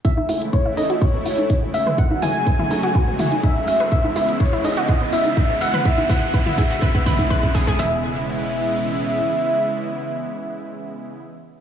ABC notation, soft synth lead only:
X:1
M:4/4
L:1/8
Q:1/4=124
K:E
V:1 name="Soft synth lead"
e2 c d c3 e | f g4- g e2 | e2 c d2 e2 f | e f2 e4 z |
e8- | e8 |]